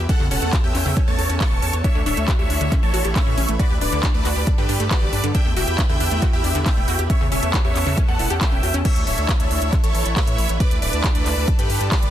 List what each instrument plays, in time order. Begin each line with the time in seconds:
0.09 analog synth pad B3 C#4 A4, synth pluck C#4, supersaw synth A4 F#5, kick, closed hi-hat
0.20 analog synth bass E2, synth pluck C#3
0.31 analog synth bass E1, synth pluck C#4, supersaw synth A4 F#5, open hi-hat
0.42 analog synth bass E2, synth pluck A3, closed hi-hat
0.53 synth pluck F#4, kick, clap, closed hi-hat
0.64 analog synth bass E2, synth pluck G4, supersaw synth E5 G5
0.75 analog synth bass E2, synth pluck C#4, clap, open hi-hat
0.86 analog synth bass E2, synth pluck C#3, open hi-hat
0.97 synth pluck C#4, kick, closed hi-hat
1.08 analog synth bass E2, synth pluck A3, supersaw synth C#5 A5
1.19 analog synth bass E2, synth pluck A4, open hi-hat
1.30 analog synth bass E2, synth pluck C#4, closed hi-hat
1.41 synth pluck C#5, supersaw synth A5 C#6, kick, clap, closed hi-hat
1.51 analog synth bass E1, synth pluck C#4
1.62 analog synth bass E2, synth pluck C#4, open hi-hat
1.73 analog synth bass E2, synth pluck C#5, closed hi-hat
1.84 analog synth pad D3 D4 E4, synth pluck D4, supersaw synth C#5 E5, kick, closed hi-hat
1.95 analog synth bass D2, synth pluck D3
2.06 analog synth bass D1, synth pluck D4, supersaw synth C#5 E5, open hi-hat
2.17 analog synth bass D2, synth pluck A3, closed hi-hat
2.28 synth pluck F#4, kick, clap, closed hi-hat
2.39 analog synth bass D2, synth pluck G4, supersaw synth C#5 E5
2.50 analog synth bass D2, synth pluck D4, open hi-hat
2.61 analog synth bass D2, synth pluck D3, closed hi-hat
2.72 analog synth pad A3 B4 C#5, synth pluck C#4, kick, clap, closed hi-hat
2.83 analog synth bass A1, synth pluck A3, supersaw synth A4 C#5
2.94 analog synth bass A1, synth pluck F#4, open hi-hat
3.05 analog synth bass A1, synth pluck G4, closed hi-hat
3.16 synth pluck C#4, supersaw synth C#5 E5, kick, clap, closed hi-hat
3.27 analog synth bass A2, synth pluck C#3
3.38 analog synth bass A1, synth pluck C#4, open hi-hat
3.49 analog synth bass A1, synth pluck A3, closed hi-hat
3.59 analog synth pad D3 D4 A4, synth pluck F#4, supersaw synth B4 D5, kick, closed hi-hat
3.70 analog synth bass D2, synth pluck G4
3.81 analog synth bass D1, synth pluck D4, supersaw synth B4 D5, open hi-hat
3.92 analog synth bass D2, synth pluck D3, closed hi-hat
4.03 synth pluck D4, kick, clap, closed hi-hat
4.14 analog synth bass D2, synth pluck A3, supersaw synth B4 D5
4.25 analog synth bass D2, synth pluck F#4, clap, open hi-hat
4.36 analog synth bass D2, synth pluck G4, open hi-hat
4.47 analog synth pad G3 G4 A4 D5, synth pluck D4, kick, closed hi-hat
4.58 analog synth bass G2, synth pluck D3, supersaw synth G4 B4
4.69 analog synth bass G2, synth pluck D4, open hi-hat
4.80 analog synth bass G2, synth pluck A3, closed hi-hat
4.91 synth pluck F#4, supersaw synth B4 D5, kick, clap, closed hi-hat
5.02 analog synth bass G1, synth pluck G4
5.13 analog synth bass G2, synth pluck D4, open hi-hat
5.24 analog synth bass G2, synth pluck D3, closed hi-hat
5.35 analog synth pad E3 E4 G4 B4, synth pluck D4, supersaw synth E5 G5, kick, closed hi-hat
5.46 analog synth bass E2, synth pluck A3
5.57 analog synth bass E1, synth pluck F#4, supersaw synth E5 G5, open hi-hat
5.68 analog synth bass E2, synth pluck G4, closed hi-hat
5.78 synth pluck D4, kick, clap, closed hi-hat
5.89 analog synth bass E2, synth pluck D3, supersaw synth E5 G5
6.00 analog synth bass E2, synth pluck D4, open hi-hat
6.11 analog synth bass E2, synth pluck A3, closed hi-hat
6.22 synth pluck F#4, kick, clap, closed hi-hat
6.33 analog synth bass E2, synth pluck G4, supersaw synth G4 E5
6.44 analog synth bass E2, synth pluck D4, open hi-hat
6.55 analog synth bass E2, synth pluck D3, closed hi-hat
6.66 synth pluck D4, supersaw synth E5 G5, kick, clap, closed hi-hat
6.77 analog synth bass E1, synth pluck A3
6.88 analog synth bass E2, synth pluck F#4, open hi-hat
6.99 analog synth bass E2, synth pluck G4, closed hi-hat
7.10 analog synth pad B3 C#4 A4, synth pluck C#4, supersaw synth C#5 E5, kick, closed hi-hat
7.21 analog synth bass E2, synth pluck C#3
7.32 analog synth bass E1, synth pluck C#4, supersaw synth C#5 E5, open hi-hat
7.43 analog synth bass E2, synth pluck A3, closed hi-hat
7.54 synth pluck F#4, kick, clap, closed hi-hat
7.65 analog synth bass E2, synth pluck G4, supersaw synth C#5 E5
7.76 analog synth bass E2, synth pluck C#4, clap, open hi-hat
7.86 analog synth bass E2, synth pluck C#3, open hi-hat
7.97 synth pluck C#4, kick, closed hi-hat
8.08 analog synth bass E2, synth pluck A3, supersaw synth A4 F#5
8.19 analog synth bass E1, synth pluck E4, open hi-hat
8.30 analog synth bass E2, synth pluck G4, closed hi-hat
8.41 synth pluck A4, supersaw synth E5 G5, kick, clap, closed hi-hat
8.52 analog synth bass E1, synth pluck C#4
8.63 analog synth bass E2, synth pluck F#4, open hi-hat
8.74 analog synth bass E2, synth pluck C#4, closed hi-hat
8.85 analog synth pad D3 D4 E4 A4, supersaw synth C#5 E5, kick, closed hi-hat, crash
8.96 analog synth bass D2, closed hi-hat
9.07 analog synth bass D1, supersaw synth C#5 E5, open hi-hat
9.18 analog synth bass D2, closed hi-hat
9.29 kick, clap, closed hi-hat
9.40 analog synth bass D2, supersaw synth C#5 E5, closed hi-hat
9.51 analog synth bass D2, open hi-hat
9.62 analog synth bass D2, closed hi-hat
9.73 analog synth pad A3 B4 C#5, kick, clap, closed hi-hat
9.84 analog synth bass A1, supersaw synth A4 C#5, closed hi-hat
9.95 analog synth bass A1, open hi-hat
10.06 analog synth bass A1, closed hi-hat
10.16 supersaw synth C#5 E5, kick, clap, closed hi-hat
10.27 analog synth bass A2, closed hi-hat
10.38 analog synth bass A1, open hi-hat
10.49 analog synth bass A1, closed hi-hat
10.60 analog synth pad D3 D4 A4, supersaw synth B4 D5, kick, closed hi-hat
10.71 analog synth bass D2, closed hi-hat
10.82 analog synth bass D1, supersaw synth B4 D5, open hi-hat
10.93 analog synth bass D2, closed hi-hat
11.04 kick, clap, closed hi-hat
11.15 analog synth bass D2, supersaw synth B4 D5, closed hi-hat
11.26 analog synth bass D2, clap, open hi-hat
11.37 analog synth bass D2, open hi-hat
11.48 analog synth pad G3 G4 D5, kick, closed hi-hat
11.59 analog synth bass G2, supersaw synth G4 B4, closed hi-hat
11.70 analog synth bass G2, open hi-hat
11.81 analog synth bass G2, closed hi-hat
11.92 supersaw synth B4 D5, kick, clap, closed hi-hat
12.03 analog synth bass G1, closed hi-hat